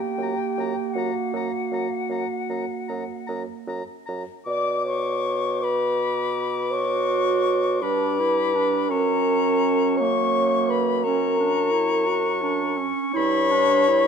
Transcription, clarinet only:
Already playing: A#3
6.73 F#4
7.82 D4
8.20 E4
8.55 D4
8.91 C#4
10.01 A#3
11.06 C#4
11.39 D4
11.72 E4
12.07 F#4
12.42 D4
12.78 C#4
13.14 E4
13.51 D4
13.88 E4

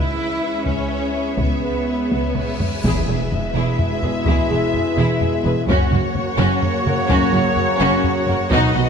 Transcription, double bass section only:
Already playing: C#2
0.66 C#2
1.39 C#2
2.12 C#2
2.84 E1
3.08 E1
3.55 E1
4.03 E1
4.26 E1
4.50 E1
4.98 E1
5.46 E1
5.69 F#1
5.91 F#1
6.39 F#1
6.86 F#1
7.10 F#1
7.33 F#1
7.80 F#1
8.27 F#1
8.51 B1
8.76 B1

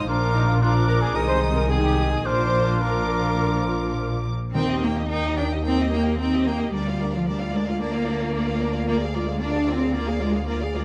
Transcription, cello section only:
0.08 A#2
1.15 C3
2.26 A#2
4.55 C4
4.83 A#3
5.10 D#4
5.37 D4
5.64 C4
5.91 A#3
6.19 C4
6.46 A#3
6.73 G3
7.14 F3
7.27 G3
7.53 G#3
7.80 A#3
8.87 A#3
9.14 G#3
9.40 D4
9.68 C4
9.94 A#3
10.21 G#3
10.47 A#3
10.73 G#3

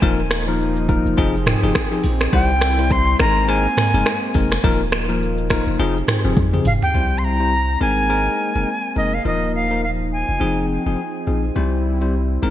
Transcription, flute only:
2.34 G5
2.92 C6
3.21 A#5
3.49 G#5
6.67 F5
6.83 G5
7.18 C6
7.24 A#5
7.82 G#5
8.97 D#5
9.14 F5
9.26 D#5
9.55 F5
9.84 F5
10.13 G#5

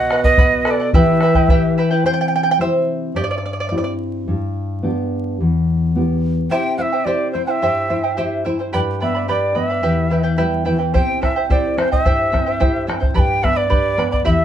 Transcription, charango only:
Already playing: B4 D#5 F#5
0.11 B4 D#5 F#5
0.25 D#5 F#5
0.38 B4 D#5 F#5
0.66 B4 D#5 F#5
0.80 D#5 F#5
0.94 E4 G4 B4 E5 G5
1.22 E4 B4 E5 G5
1.35 E4 B4 G5
1.50 E4 G4 B4 E5 G5
1.78 E4 B4 E5 G5
1.91 E4 B4 G5
2.06 C5 G5
2.13 G5
2.21 G5
2.28 G5
2.36 G5
2.43 G5
2.51 G5
2.61 C5 E5
3.16 G4 D5
3.24 D5
3.31 D5
3.38 D5
3.46 D5
3.53 D5
3.60 D5
3.69 D5
3.78 D5
3.84 D5
6.51 E4 G4 C5 E5 G5
6.78 E4 C5 E5 G5
6.92 E4 C5 G5
7.06 E4 G4 C5 E5 G5
7.34 E4 C5 E5 G5
7.47 E4 C5 G5
7.62 E4 G4 C5 E5 G5
7.89 E4 C5 E5 G5
8.04 E4 C5 G5
8.17 E4 G4 C5 E5 G5
8.45 E4 C5 E5 G5
8.59 E4 C5 G5
8.73 G4 B4 D5 G5 B5
9.00 B4 D5 G5 B5
9.15 B4 D5 B5
9.28 G4 B4 D5 G5 B5
9.55 B4 D5 G5 B5
9.70 B4 D5 B5
9.83 E4 G4 B4 E5 G5
10.10 E4 B4 E5 G5
10.23 E4 B4 G5
10.38 E4 G4 B4 E5 G5
10.65 E4 B4 E5 G5
10.79 E4 B4 G5
10.94 E4 G4 C5 E5 G5
11.21 E4 C5 E5 G5
11.36 E4 C5 G5
11.50 E4 G4 C5 E5 G5
11.78 E4 C5 E5 G5
11.91 E4 C5 G5
12.05 E4 G4 C5 E5 G5
12.32 E4 C5 E5 G5
12.46 E4 C5 G5
12.60 E4 G4 C5 E5 G5
12.87 E4 C5 E5 G5
13.00 E4 C5 G5
13.14 G4 B4 D5 G5 B5
13.42 B4 D5 G5 B5
13.56 B4 D5 B5
13.70 G4 B4 D5 G5 B5
13.97 B4 D5 G5 B5
14.12 B4 D5 B5
14.25 E4 G4 E5 G5 B5

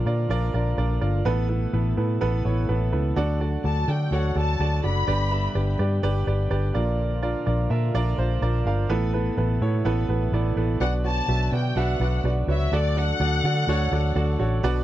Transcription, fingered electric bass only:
0.06 A#2
0.29 A#1
0.54 A#1
0.78 A#1
1.01 G1
1.25 A1
1.73 A1
1.97 A2
2.22 A1
2.45 A1
2.69 A1
2.93 C#2
3.16 D2
3.64 D2
3.88 D3
4.11 D2
4.35 D2
4.59 D2
4.84 F#1
5.08 G1
5.55 G1
5.79 G2
6.03 G1
6.27 G1
6.50 G1
6.75 A#1
7.47 A#1
7.70 A#2
7.94 A#1
8.18 A#1
8.41 A#1
8.65 G1
8.90 A1
9.37 A1
9.61 A2
9.85 A1
10.09 A1
10.32 A1
10.56 A1
10.80 B1
11.28 B1
11.52 B2
11.76 B1
12.00 B1
12.24 B1
12.47 C#2
12.72 D2
13.20 D2
13.44 D3
13.67 D2
13.92 D2
14.15 D2
14.39 A1
14.63 B1

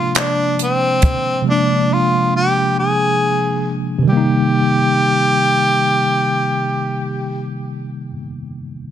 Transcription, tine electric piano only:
Already playing: C3 F3 G#3 A#3 D4
1.42 C3 F3
1.46 G#3 A#3
1.51 D4
3.99 C3
4.03 D#3
4.07 G3
4.12 A#3
4.17 D#4

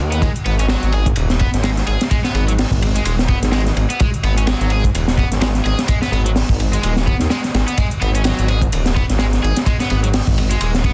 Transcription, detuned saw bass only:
0.00 D#2
0.46 G#1
0.83 G#1
1.17 D#1
1.54 G#1
1.87 G#1
2.34 G#1
2.71 G#1
3.06 D#1
3.42 G#1
3.76 G#1
4.23 G#1
4.61 G#1
4.94 D#1
5.31 G#1
5.65 G#1
6.12 G#1
6.49 G#1
6.84 D#1
7.21 D#2
7.54 G#1
8.02 G#1
8.39 G#1
8.73 D#1
9.10 G#1
9.44 G#1
9.91 G#1
10.27 G#1
10.62 D#1

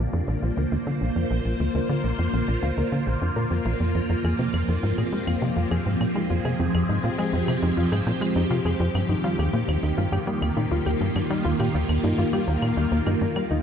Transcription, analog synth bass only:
0.13 F2
0.28 A#1
0.43 A#1
0.57 D2
0.72 D2
0.87 D3
1.01 A#1
1.16 F2
1.31 A#1
1.45 A#1
1.60 D2
1.75 D2
1.89 D3
2.04 A#1
2.19 F2
2.33 A#1
2.48 A#1
2.63 D2
2.77 D2
2.92 D3
3.07 A#1
3.22 F2
3.36 A#2
3.51 F2
3.65 A#1
3.80 F2
3.95 F2
4.10 F2
4.24 F2
4.39 C3
4.54 F2
4.68 F2
4.83 G#2
4.98 A#2
5.12 G#3
5.27 F2
5.42 C3
5.57 F2
5.71 F2
5.86 G#2
6.01 A#2
6.15 G#3
6.30 F2
6.45 C3
6.60 F2
6.74 F2
6.89 G#2
7.04 A#2
7.18 G#3
7.33 F2
7.48 C3
7.63 F2
7.77 F2
7.92 G#2
8.06 A#2
8.21 G#3
8.36 F2
8.50 C3
8.65 F2
8.80 F2
8.95 G2
9.09 G2
9.24 G3
9.39 D#2
9.53 A#2
9.68 D#2
9.83 D#2
9.98 G2
10.12 G2
10.27 G3
10.42 D#2
10.57 A#2
10.71 D#2
10.86 D#2
11.01 G2
11.16 G2
11.30 G3
11.45 D#2
11.60 A#2
11.75 D#2
11.89 D#2
12.04 G2
12.18 G2
12.33 G3
12.48 D#2
12.62 A#2
12.77 D#2
12.92 D#2
13.07 G2
13.21 G2
13.36 G3
13.51 D#2

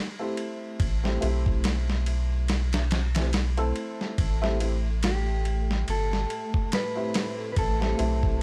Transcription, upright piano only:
0.19 A3 C4 E4 G4
1.03 A3 C4 E4 G4
1.21 A3 C4 E4 G4
3.15 A3 C4 E4 G4
3.57 A3 C4 E4 A4
4.42 A3 C4 E4 G4
4.60 A3 C4 E4 G4
6.95 A3 C4 E4 G4
7.80 A3 C4 E4 G4
7.98 A3 C4 E4 G4

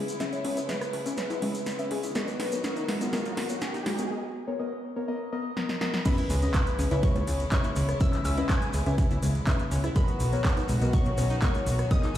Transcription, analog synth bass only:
Already playing: C#2
0.45 C#2
0.93 C#2
1.06 C#2
1.30 C#2
1.42 C#2
1.91 C#2
2.40 B1
2.88 B1
3.01 B1
3.25 B1
3.37 B1
3.86 B1
6.30 C#2
6.79 C#2
6.91 C#2
7.16 C#2
7.27 C#2
7.76 C#2
8.25 C#2
8.74 C#2
8.86 C#2
9.11 C#2
9.23 C#2
9.71 C#2
10.20 B1
10.69 B1
10.82 B1
11.06 B1
11.18 B1
11.67 B1

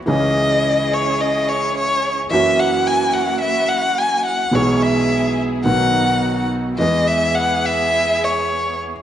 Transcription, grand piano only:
0.06 C#2 C#3 E3 G#3 C#4 G#4
2.30 F#2 E3 F#3 A#3 C#4
2.34 F#4
4.51 B1 B2 E3 G#3 B3 G#4
5.64 B1 B2 D#3 F#3 B3 F#4
6.78 E2 E3 G#3 B3 G#4

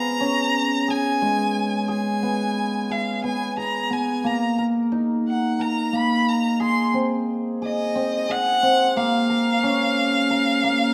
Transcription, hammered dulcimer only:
Already playing: B3 G#4
0.20 C#4
0.88 G#4
1.22 G#3
1.88 G#4
2.23 B3
2.90 G#4
3.24 B3
3.57 G#4
3.90 B3
4.24 A#3
4.58 A#4
4.92 D#4
5.59 A#4
5.93 A#3
6.60 G#4
6.94 C4
7.62 G#4
7.95 C4
8.29 G#4
8.63 C4
8.96 A#3
9.30 A#4
9.63 C#4
10.30 A#4
10.63 A#3

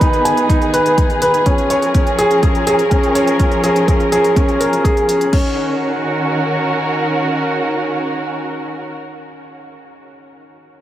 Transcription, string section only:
Already playing: D#3 B3 G#4 B4
1.47 F3
1.70 C#4 A#4
5.34 D#3
5.41 C#4
5.48 F#4
5.55 A#4

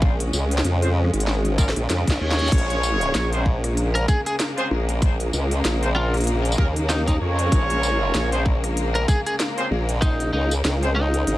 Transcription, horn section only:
0.82 C4 C#4 F4 G#4 C5
1.58 A#3 C#4 F4 G#4 A#4
2.21 C#4 F4 G#4 C#5
3.33 C4 C#4 F4 G#4 C5
4.57 C4 C#4 F4 G#4 C5
5.82 C4 C#4 F4 G#4 C5
6.58 A#3 C#4 F4 G#4 A#4
7.21 C#4 F4 G#4 C#5
8.32 C4 C#4 F4 G#4 C5
9.57 C4 C#4 F4 G#4 C5
10.82 C4 C#4 F4 G#4 C5

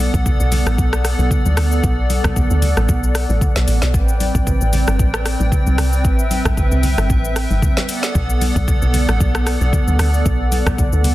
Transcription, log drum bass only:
0.14 B1
0.40 B1
0.66 A1
0.78 B1
1.19 B1
1.45 D2
1.57 D2
1.84 B1
2.24 B1
2.51 D2
2.77 A1
2.89 B1
3.30 A1
3.56 B1
3.68 A1
3.82 B1
3.94 A1
4.35 A1
4.61 A1
4.88 G1
4.99 A1
5.40 A1
5.67 C2
5.78 C2
6.05 A1
6.45 A1
6.72 C2
6.98 G1
7.10 A1
7.51 G1
8.15 B1
8.56 B1
8.82 B1
9.09 A1
9.20 B1
9.61 B1
9.88 D2
9.99 D2
10.26 B1
10.66 B1
10.93 D2

